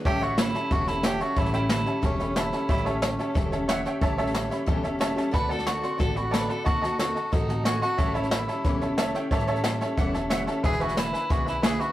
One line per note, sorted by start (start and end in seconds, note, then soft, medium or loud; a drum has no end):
0.05 0.51 A1 medium
0.05 0.22 A2 medium
0.05 0.22 E3 medium
0.05 0.22 G3 medium
0.05 0.23 C#4 loud
0.05 0.24 G4 loud
0.05 0.22 G4 medium
0.05 0.21 A4 loud
0.05 0.15 C#5 loud
0.05 0.15 E5 medium
0.05 0.16 A5 loud
0.05 kick loud
0.05 snare soft
0.21 0.38 C#4 medium
0.21 0.40 F#4 loud
0.21 0.39 G4 medium
0.21 0.38 A4 medium
0.21 0.31 C#5 medium
0.21 0.31 E5 medium
0.21 0.32 F#5 loud
0.21 snare soft
0.25 0.37 G3 soft
0.38 0.55 G3 medium
0.38 0.55 C#4 medium
0.38 0.74 E4 loud
0.38 0.54 G4 medium
0.38 0.53 A4 medium
0.38 0.48 C#5 medium
0.38 0.48 E5 medium
0.38 0.49 B5 medium
0.38 snare loud
0.38 hi-hat pedal medium
0.54 0.71 G3 soft
0.54 0.71 C#4 soft
0.54 0.71 G4 medium
0.54 0.71 A4 medium
0.54 0.64 C#5 medium
0.54 0.64 E5 medium
0.54 0.65 A5 medium
0.54 snare soft
0.71 1.17 E1 medium
0.71 0.87 A2 medium
0.71 0.88 E3 medium
0.71 0.88 G3 medium
0.71 0.88 C#4 loud
0.71 0.89 F#4 loud
0.71 0.87 G4 medium
0.71 0.86 A4 loud
0.71 0.81 C#5 medium
0.71 0.81 E5 medium
0.71 0.81 A5 medium
0.71 kick loud
0.71 snare soft
0.86 1.02 G3 soft
0.86 1.03 C#4 soft
0.86 1.04 E4 loud
0.86 1.04 G4 soft
0.86 1.04 A4 soft
0.86 0.97 C#5 medium
0.86 0.97 E5 medium
0.86 0.98 A5 medium
0.86 snare soft
1.03 1.20 G3 medium
1.03 1.20 C#4 medium
1.03 1.23 G4 loud
1.03 1.19 G4 medium
1.03 1.18 A4 medium
1.03 1.14 C#5 loud
1.03 1.14 E5 medium
1.03 1.15 A5 loud
1.03 snare loud
1.03 hi-hat pedal medium
1.19 1.36 G3 soft
1.19 1.36 C#4 soft
1.19 1.40 F#4 loud
1.19 1.37 G4 medium
1.19 1.36 A4 medium
1.19 1.30 C#5 medium
1.19 1.31 E5 medium
1.19 1.31 A5 medium
1.19 snare soft
1.36 1.83 A1 medium
1.36 1.53 A2 medium
1.36 1.53 E3 medium
1.36 1.54 G3 medium
1.36 1.53 C#4 medium
1.36 1.54 E4 loud
1.36 1.52 G4 medium
1.36 1.50 A4 medium
1.36 1.47 C#5 loud
1.36 1.47 E5 medium
1.36 1.47 A5 medium
1.36 kick loud
1.36 snare soft
1.45 snare soft
1.52 1.67 G3 soft
1.52 1.68 C#4 medium
1.52 1.69 E4 medium
1.52 1.69 G4 medium
1.52 1.69 A4 medium
1.52 1.63 C#5 medium
1.52 1.63 E5 medium
1.52 1.64 G5 loud
1.52 snare soft
1.68 1.86 G3 medium
1.68 1.86 C#4 medium
1.68 2.07 E4 loud
1.68 1.85 G4 medium
1.68 1.84 A4 medium
1.68 1.79 C#5 medium
1.68 1.80 E5 medium
1.68 1.80 A5 medium
1.68 snare loud
1.68 hi-hat pedal medium
1.85 2.01 G3 soft
1.85 2.02 C#4 medium
1.85 2.03 G4 medium
1.85 2.02 A4 medium
1.85 1.96 C#5 medium
1.85 1.97 E5 medium
1.85 1.97 A5 medium
1.85 snare soft
2.02 2.49 E1 loud
2.02 2.19 A2 medium
2.02 2.19 E3 medium
2.02 2.19 G3 medium
2.02 2.19 C#4 medium
2.02 2.40 C#4 medium
2.02 2.18 G4 medium
2.02 2.17 A4 loud
2.02 2.13 C#5 medium
2.02 2.13 E5 medium
2.02 2.13 A5 medium
2.02 kick loud
2.02 snare soft
2.18 2.34 G3 soft
2.18 2.35 C#4 soft
2.18 2.36 G4 soft
2.18 2.36 A4 medium
2.18 2.29 C#5 medium
2.18 2.30 E5 medium
2.18 2.30 B5 medium
2.18 snare soft
2.36 2.52 G3 medium
2.36 2.53 C#4 medium
2.36 2.70 E4 loud
2.36 2.52 G4 medium
2.36 2.51 A4 medium
2.36 2.46 C#5 medium
2.36 2.46 E5 medium
2.36 2.47 A5 loud
2.36 snare loud
2.36 hi-hat pedal medium
2.52 2.68 G3 soft
2.52 2.69 C#4 soft
2.52 2.69 G4 soft
2.52 2.69 A4 medium
2.52 2.63 C#5 medium
2.52 2.63 E5 medium
2.52 2.63 A5 medium
2.52 snare soft
2.68 3.15 A1 loud
2.68 2.85 A2 medium
2.68 2.86 E3 medium
2.68 2.86 G3 medium
2.68 2.86 C#4 medium
2.68 2.88 E4 loud
2.68 2.85 G4 medium
2.68 2.84 A4 medium
2.68 2.79 C#5 medium
2.68 2.79 E5 medium
2.68 2.80 B5 loud
2.68 kick loud
2.68 snare soft
2.77 snare soft
2.85 3.01 G3 medium
2.85 3.02 C#4 medium
2.85 3.02 G4 medium
2.85 3.02 A4 medium
2.85 2.95 C#5 medium
2.85 2.96 E5 medium
2.85 2.96 A5 loud
2.85 snare soft
3.02 3.19 G3 medium
3.02 3.65 C#4 medium
3.02 3.19 C#4 medium
3.02 3.17 A4 medium
3.02 3.12 C#5 medium
3.02 3.12 E5 medium
3.02 3.13 A5 medium
3.02 snare loud
3.02 hi-hat pedal medium
3.19 3.34 G3 soft
3.19 3.34 C#4 medium
3.19 3.35 G4 medium
3.19 3.35 A4 medium
3.19 3.29 C#5 medium
3.19 3.29 E5 medium
3.19 3.30 A5 medium
3.19 snare soft
3.34 3.82 E1 medium
3.34 3.52 A2 medium
3.34 3.52 E3 medium
3.34 3.52 G3 medium
3.34 3.52 C#4 medium
3.34 3.51 G4 medium
3.34 3.50 A4 medium
3.34 3.45 C#5 medium
3.34 3.46 E5 medium
3.34 3.46 A5 medium
3.34 kick loud
3.34 snare soft
3.51 3.67 G3 soft
3.51 3.68 C#4 medium
3.51 3.69 G4 medium
3.51 3.68 A4 medium
3.51 3.62 C#5 medium
3.51 3.62 E5 medium
3.51 3.62 A5 medium
3.51 snare soft
3.68 3.85 G3 medium
3.68 3.85 C#4 medium
3.68 3.84 G4 medium
3.68 3.83 A4 medium
3.68 3.78 C#5 loud
3.68 3.79 E5 loud
3.68 3.79 F#5 loud
3.68 snare loud
3.68 hi-hat pedal medium
3.85 4.02 G3 medium
3.85 4.01 C#4 medium
3.85 4.02 G4 medium
3.85 4.01 A4 medium
3.85 3.95 C#5 loud
3.85 3.96 E5 medium
3.85 3.96 G5 loud
3.85 snare soft
4.01 4.48 A1 loud
4.01 4.18 A2 medium
4.01 4.18 E3 medium
4.01 4.19 G3 medium
4.01 4.19 C#4 medium
4.01 4.18 G4 loud
4.01 4.17 A4 loud
4.01 4.11 C#5 loud
4.01 4.12 E5 loud
4.01 4.12 A5 loud
4.01 kick loud
4.01 snare soft
4.18 4.33 G3 medium
4.18 4.34 C#4 medium
4.18 4.35 G4 medium
4.18 4.35 A4 medium
4.18 4.28 C#5 loud
4.18 4.28 E5 loud
4.18 4.29 A5 loud
4.18 snare soft
4.27 snare soft
4.34 4.51 G3 medium
4.34 4.50 C#4 medium
4.34 4.49 G4 medium
4.34 4.48 A4 medium
4.34 4.44 C#5 medium
4.34 4.44 E5 medium
4.34 4.45 A5 loud
4.34 snare loud
4.34 hi-hat pedal medium
4.49 4.66 G3 soft
4.49 4.66 C#4 medium
4.49 4.67 G4 medium
4.49 4.67 A4 medium
4.49 4.61 C#5 medium
4.49 4.61 E5 medium
4.49 4.62 B5 medium
4.49 snare soft
4.66 5.14 E1 medium
4.66 4.84 A2 medium
4.66 4.84 E3 loud
4.66 4.84 G3 medium
4.66 4.83 C#4 loud
4.66 4.83 G4 loud
4.66 4.82 A4 loud
4.66 4.77 C#5 medium
4.66 4.78 E5 medium
4.66 4.78 A5 medium
4.66 kick loud
4.66 snare soft
4.83 4.98 G3 soft
4.83 4.99 C#4 medium
4.83 5.00 G4 medium
4.83 5.00 A4 medium
4.83 4.94 C#5 medium
4.83 4.94 E5 medium
4.83 4.95 A5 medium
4.83 snare soft
4.99 5.16 G3 medium
4.99 5.15 C#4 medium
4.99 5.14 G4 medium
4.99 5.10 C#5 loud
4.99 5.11 E5 loud
4.99 5.11 A5 loud
4.99 snare loud
4.99 hi-hat pedal medium
5.15 5.31 G3 soft
5.15 5.32 C#4 medium
5.15 5.33 G4 medium
5.15 5.32 A4 medium
5.15 5.27 C#5 medium
5.15 5.27 E5 medium
5.15 5.28 A5 loud
5.15 snare soft
5.31 5.80 D2 medium
5.31 5.49 D3 medium
5.31 5.49 A3 medium
5.31 5.50 C4 medium
5.31 5.49 F#4 medium
5.31 5.47 A4 medium
5.31 5.53 B4 loud
5.31 5.43 D5 medium
5.31 5.44 F#5 medium
5.31 5.44 A5 loud
5.31 kick loud
5.31 snare soft
5.48 5.65 C4 medium
5.48 5.67 F#4 medium
5.48 5.66 A4 medium
5.48 5.68 A4 loud
5.48 5.60 D5 loud
5.48 5.60 F#5 medium
5.48 5.60 A5 loud
5.48 snare soft
5.59 snare soft
5.65 5.83 A3 medium
5.65 5.83 C4 medium
5.65 6.00 F#4 loud
5.65 5.82 F#4 medium
5.65 5.80 A4 medium
5.65 5.77 D5 medium
5.65 5.77 F#5 medium
5.65 5.77 A5 medium
5.65 snare loud
5.65 hi-hat pedal medium
5.82 5.98 C4 soft
5.82 5.99 F#4 soft
5.82 5.99 A4 medium
5.82 5.93 D5 medium
5.82 5.93 F#5 medium
5.82 5.94 C6 medium
5.82 snare soft
5.98 6.46 A1 medium
5.98 6.16 D3 medium
5.98 6.16 A3 medium
5.98 6.16 C4 medium
5.98 6.16 F#4 medium
5.98 6.18 A4 loud
5.98 6.13 A4 loud
5.98 6.09 D5 medium
5.98 6.10 F#5 medium
5.98 6.10 A5 medium
5.98 kick loud
5.98 snare soft
6.15 6.31 C4 soft
6.15 6.32 F#4 soft
6.15 6.35 F#4 loud
6.15 6.32 A4 medium
6.15 6.26 D5 medium
6.15 6.26 F#5 medium
6.15 6.27 B5 medium
6.15 snare soft
6.31 6.49 A3 medium
6.31 6.49 C4 medium
6.31 6.48 F#4 medium
6.31 6.47 A4 medium
6.31 6.52 B4 loud
6.31 6.42 D5 loud
6.31 6.43 F#5 medium
6.31 6.43 A5 loud
6.31 snare loud
6.31 hi-hat pedal medium
6.48 6.65 C4 soft
6.48 6.65 F#4 medium
6.48 6.66 A4 medium
6.48 6.65 A4 loud
6.48 6.59 D5 medium
6.48 6.60 F#5 medium
6.48 6.60 B5 medium
6.48 snare soft
6.64 7.13 D#2 medium
6.64 6.82 D#3 medium
6.64 6.83 A3 medium
6.64 6.83 C4 medium
6.64 6.97 F#4 loud
6.64 6.82 F#4 medium
6.64 6.80 A4 loud
6.64 6.75 D#5 medium
6.64 6.76 F#5 medium
6.64 6.76 A5 loud
6.64 kick loud
6.64 snare soft
6.82 6.99 C4 soft
6.82 6.99 F#4 medium
6.82 6.99 A4 medium
6.82 6.92 D#5 loud
6.82 6.93 F#5 medium
6.82 6.93 A5 loud
6.82 snare soft
6.98 7.16 A3 medium
6.98 7.16 C4 medium
6.98 7.35 F#4 loud
6.98 7.15 F#4 medium
6.98 7.14 A4 medium
6.98 7.09 D#5 medium
6.98 7.09 F#5 medium
6.98 7.10 A5 medium
6.98 snare loud
6.98 hi-hat pedal medium
7.15 7.32 C4 soft
7.15 7.32 F#4 soft
7.15 7.32 A4 medium
7.15 7.26 D#5 medium
7.15 7.26 F#5 medium
7.15 7.26 A5 medium
7.15 snare soft
7.31 7.79 A1 loud
7.31 7.49 D#3 medium
7.31 7.49 A3 medium
7.31 7.49 C4 medium
7.31 7.65 D#4 loud
7.31 7.48 F#4 loud
7.31 7.47 A4 medium
7.31 7.42 D#5 medium
7.31 7.43 F#5 medium
7.31 7.43 A5 medium
7.31 kick loud
7.31 snare soft
7.48 7.64 C4 soft
7.48 7.65 F#4 soft
7.48 7.65 A4 soft
7.48 7.59 D#5 medium
7.48 7.59 F#5 medium
7.48 7.60 A5 medium
7.48 snare soft
7.64 7.82 A3 medium
7.64 7.82 C4 medium
7.64 7.81 F#4 loud
7.64 7.82 F#4 medium
7.64 7.80 A4 medium
7.64 7.75 D#5 medium
7.64 7.75 F#5 medium
7.64 7.76 G#5 loud
7.64 snare loud
7.64 hi-hat pedal medium
7.81 7.98 C4 soft
7.81 8.16 F#4 loud
7.81 7.99 F#4 soft
7.81 7.98 A4 medium
7.81 7.92 D#5 medium
7.81 7.92 F#5 medium
7.81 7.93 A5 medium
7.81 snare soft
7.98 8.45 A1 medium
7.98 8.15 A2 medium
7.98 8.15 E3 medium
7.98 8.16 G3 medium
7.98 8.15 C#4 medium
7.98 8.14 E4 medium
7.98 8.13 A4 medium
7.98 8.08 C#5 loud
7.98 8.09 E5 medium
7.98 8.09 A5 loud
7.98 kick loud
7.98 snare soft
8.14 8.30 G3 medium
8.14 8.31 C#4 medium
8.14 8.31 E4 medium
8.14 8.32 E4 medium
8.14 8.31 A4 medium
8.14 8.25 C#5 loud
8.14 8.25 E5 medium
8.14 8.25 A5 loud
8.14 snare soft
8.23 snare soft
8.31 8.48 G3 medium
8.31 8.49 C#4 medium
8.31 8.94 E4 medium
8.31 8.48 E4 medium
8.31 8.47 A4 medium
8.31 8.41 C#5 medium
8.31 8.42 E5 medium
8.31 8.42 B5 medium
8.31 snare loud
8.31 hi-hat pedal medium
8.48 8.65 C#4 soft
8.48 8.66 E4 medium
8.48 8.65 A4 medium
8.48 8.58 C#5 medium
8.48 8.59 E5 medium
8.48 8.59 A5 medium
8.48 snare soft
8.52 8.64 G3 soft
8.64 9.12 E1 medium
8.64 8.82 A2 medium
8.64 8.82 E3 loud
8.64 8.82 G3 medium
8.64 8.82 C#4 medium
8.64 8.82 E4 medium
8.64 8.80 A4 loud
8.64 8.75 C#5 medium
8.64 8.75 E5 medium
8.64 8.76 B5 medium
8.64 kick loud
8.64 snare soft
8.81 8.96 G3 soft
8.81 8.97 C#4 soft
8.81 8.98 E4 medium
8.81 8.98 A4 medium
8.81 8.92 C#5 medium
8.81 8.92 E5 medium
8.81 8.92 A5 medium
8.81 snare soft
8.97 9.15 G3 medium
8.97 9.15 C#4 medium
8.97 9.15 E4 medium
8.97 9.13 A4 medium
8.97 9.08 C#5 loud
8.97 9.08 E5 loud
8.97 9.09 A5 loud
8.97 snare loud
8.97 hi-hat pedal medium
9.14 9.31 G3 soft
9.14 9.32 C#4 medium
9.14 9.32 E4 medium
9.14 9.31 A4 medium
9.14 9.25 C#5 loud
9.14 9.25 E5 medium
9.14 9.26 G5 loud
9.14 snare soft
9.31 9.78 A1 medium
9.31 9.48 A2 medium
9.31 9.49 E3 loud
9.31 9.49 G3 loud
9.31 9.49 C#4 loud
9.31 9.49 E4 medium
9.31 9.47 A4 loud
9.31 9.41 C#5 loud
9.31 9.42 E5 loud
9.31 9.42 A5 loud
9.31 kick loud
9.31 snare soft
9.39 snare soft
9.47 9.65 C#4 medium
9.47 9.65 E4 medium
9.47 9.65 A4 medium
9.47 9.58 C#5 loud
9.47 9.58 E5 loud
9.47 9.59 A5 loud
9.47 snare soft
9.52 9.64 G3 medium
9.52 snare soft
9.64 9.81 G3 medium
9.64 9.82 C#4 medium
9.64 9.82 E4 medium
9.64 9.74 C#5 medium
9.64 9.75 E5 medium
9.64 9.75 A5 loud
9.64 snare loud
9.64 hi-hat pedal medium
9.68 9.81 A4 medium
9.81 9.98 C#4 medium
9.81 9.99 E4 medium
9.81 9.98 A4 medium
9.81 9.91 C#5 loud
9.81 9.91 E5 medium
9.81 9.92 A5 loud
9.81 snare soft
9.85 9.97 G3 medium
9.97 10.44 E1 medium
9.97 10.15 A2 medium
9.97 10.15 E3 loud
9.97 10.15 G3 loud
9.97 10.15 C#4 loud
9.97 10.15 E4 medium
9.97 10.14 A4 loud
9.97 10.07 C#5 medium
9.97 10.08 E5 medium
9.97 10.08 F#5 medium
9.97 kick loud
9.97 snare soft
10.13 10.32 E4 medium
10.13 10.31 A4 medium
10.13 10.24 C#5 medium
10.13 10.25 E5 medium
10.13 10.25 A5 loud
10.13 snare soft
10.17 10.30 G3 soft
10.17 10.31 C#4 soft
10.29 10.48 G3 medium
10.29 10.48 C#4 medium
10.29 10.40 C#5 loud
10.29 10.41 E5 loud
10.29 10.41 F#5 loud
10.29 snare loud
10.29 hi-hat pedal medium
10.34 10.48 E4 medium
10.34 10.47 A4 medium
10.46 10.64 C#4 medium
10.46 10.64 E4 medium
10.46 10.64 A4 medium
10.46 10.57 C#5 medium
10.46 10.57 E5 medium
10.46 10.58 A5 loud
10.46 snare soft
10.50 10.64 G3 medium
10.63 11.10 E1 medium
10.63 10.81 E3 medium
10.63 10.81 G#3 medium
10.63 10.81 D4 medium
10.63 10.80 E4 medium
10.63 10.84 G#4 loud
10.63 10.74 B4 medium
10.63 10.79 B4 loud
10.63 10.74 E5 medium
10.63 10.75 G#5 loud
10.63 kick loud
10.63 snare soft
10.73 snare soft
10.80 10.97 D4 medium
10.80 10.97 E4 medium
10.80 11.00 F#4 medium
10.80 10.97 B4 medium
10.80 10.90 B4 loud
10.80 10.91 E5 medium
10.80 10.91 G#5 loud
10.80 snare soft
10.88 snare soft
10.96 11.13 G#3 medium
10.96 11.14 D4 medium
10.96 11.33 E4 loud
10.96 11.14 E4 medium
10.96 11.07 B4 medium
10.96 11.12 B4 medium
10.96 11.07 E5 medium
10.96 11.08 G#5 medium
10.96 snare loud
10.96 hi-hat pedal medium
11.13 11.30 E4 soft
11.13 11.23 B4 medium
11.13 11.30 B4 medium
11.13 11.24 E5 medium
11.13 11.24 G#5 medium
11.13 snare soft
11.17 11.30 D4 soft
11.29 11.77 B1 medium
11.29 11.47 E3 medium
11.29 11.47 G#3 medium
11.29 11.47 D4 medium
11.29 11.47 E4 medium
11.29 11.47 F#4 loud
11.29 11.40 B4 medium
11.29 11.45 B4 medium
11.29 11.40 E5 medium
11.29 11.41 G#5 medium
11.29 kick loud
11.29 snare soft
11.45 11.62 D4 soft
11.45 11.63 E4 medium
11.45 11.65 E4 loud
11.45 11.56 B4 medium
11.45 11.63 B4 medium
11.45 11.57 E5 medium
11.45 11.57 G#5 medium
11.45 snare soft
11.62 11.79 G#3 medium
11.62 11.80 D4 medium
11.62 11.79 E4 medium
11.62 11.82 G#4 loud
11.62 11.73 B4 loud
11.62 11.78 B4 medium
11.62 11.73 E5 loud
11.62 11.74 G#5 loud
11.62 snare loud
11.62 hi-hat pedal medium
11.79 11.92 D4 soft
11.79 11.92 E4 medium
11.79 11.92 F#4 loud
11.79 11.92 B4 medium
11.79 11.90 B4 medium
11.79 11.90 E5 medium
11.79 11.90 B5 medium
11.79 snare soft